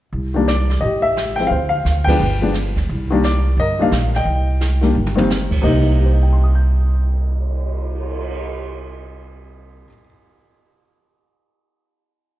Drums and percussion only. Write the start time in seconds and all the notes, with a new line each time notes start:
0.14 brush sweep
0.48 snare, hi-hat pedal
0.70 snare
0.82 brush sweep
1.17 snare, hi-hat pedal
1.39 snare
1.51 brush sweep
1.86 snare, hi-hat pedal
2.07 kick, ride
2.20 brush sweep
2.54 snare, hi-hat pedal
2.76 kick, snare
2.89 brush sweep
3.24 snare, hi-hat pedal
3.58 brush sweep
3.92 snare, hi-hat pedal
4.14 snare
4.26 brush sweep
4.61 snare, hi-hat pedal
4.82 snare
5.06 mid tom
5.18 floor tom
5.30 snare, hi-hat pedal
5.51 kick, crash
5.64 kick, crash
5.86 cymbal swell